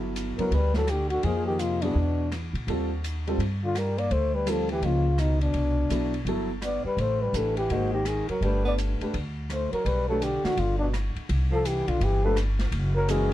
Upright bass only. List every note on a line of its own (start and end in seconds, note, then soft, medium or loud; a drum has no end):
0.00 0.34 G1 medium
0.38 muted upright bass stroke soft
0.51 1.20 D2 medium
1.23 1.92 F2 medium
1.95 2.50 E2 medium
2.53 2.66 A#2 medium
2.67 3.35 D#2 medium
3.38 4.07 G2 medium
4.11 4.79 D2 medium
4.82 5.51 C#2 medium
5.54 5.88 C2 medium
5.89 6.23 B1 medium
6.25 6.80 G1 medium
6.84 muted upright bass stroke soft
6.97 7.31 A1 medium
7.33 7.67 A1 medium
7.70 8.25 G#1 medium
8.28 muted upright bass stroke soft
8.41 8.96 G1 medium
9.01 muted upright bass stroke soft
9.14 9.68 D2 medium
9.72 muted upright bass stroke soft
9.85 10.40 B1 medium
10.44 muted upright bass stroke soft
10.57 11.12 G1 medium
11.16 muted upright bass stroke soft
11.29 11.84 C2 medium
11.88 12.00 B1 medium
12.01 12.69 G1 medium
12.72 13.33 F#1 medium